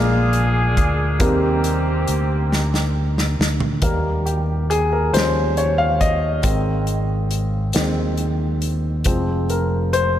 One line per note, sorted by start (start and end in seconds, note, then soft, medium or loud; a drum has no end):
0.00 0.78 A#1 medium
0.00 1.16 A#2 medium
0.00 1.21 G#3 medium
0.00 1.19 A#3 medium
0.00 1.18 D4 medium
0.00 1.21 D4 soft
0.00 1.17 F4 medium
0.00 1.21 F4 medium
0.00 1.18 G#4 medium
0.00 1.20 A#4 medium
0.33 closed hi-hat soft
0.77 1.18 D2 medium
0.77 kick medium
0.77 closed hi-hat medium
1.19 2.04 D#2 medium
1.19 2.48 C3 medium
1.19 3.78 G3 medium
1.19 3.79 A#3 medium
1.19 2.91 A#3 medium
1.19 3.79 C4 medium
1.19 2.91 C4 medium
1.19 3.79 D#4 medium
1.19 2.92 G4 medium
1.19 3.79 A#4 medium
1.19 kick medium
1.19 closed hi-hat medium
1.64 closed hi-hat medium
2.08 3.35 D2 medium
2.08 closed hi-hat medium
2.52 snare medium
2.74 snare medium
3.18 snare medium
3.39 3.79 D2 medium
3.39 snare medium
3.60 floor tom medium
3.82 5.10 D#2 medium
3.82 4.40 D#3 soft
3.82 4.41 G3 soft
3.82 4.41 A#3 medium
3.82 4.28 A#4 medium
3.82 kick medium
3.82 closed hi-hat medium
4.26 4.71 G4 medium
4.26 closed hi-hat soft
4.70 4.75 G#4 medium
4.70 closed hi-hat medium
4.92 5.13 A#4 medium
5.13 6.41 D#2 medium
5.13 5.71 F3 soft
5.13 5.72 G3 soft
5.13 5.72 C#4 soft
5.13 5.54 C5 medium
5.13 closed hi-hat medium
5.17 snare medium
5.57 5.78 C#5 medium
5.57 closed hi-hat medium
5.78 6.01 F5 medium
6.01 8.15 D#5 medium
6.01 kick medium
6.01 closed hi-hat medium
6.43 7.71 G#1 medium
6.43 7.71 D#3 soft
6.43 7.71 G#3 soft
6.43 7.72 C4 medium
6.43 kick medium
6.43 closed hi-hat medium
6.87 closed hi-hat medium
7.31 closed hi-hat medium
7.73 9.03 D#2 medium
7.73 8.15 D#3 soft
7.73 8.15 G#3 soft
7.73 8.15 C4 medium
7.73 snare loud
7.73 closed hi-hat medium
8.18 closed hi-hat soft
8.62 closed hi-hat medium
9.04 10.19 F1 medium
9.04 9.64 F3 medium
9.04 9.64 G#3 soft
9.04 9.65 C4 medium
9.04 kick medium
9.04 closed hi-hat medium
9.50 9.95 A#4 medium
9.50 closed hi-hat soft
9.93 10.19 C5 medium
9.93 closed hi-hat medium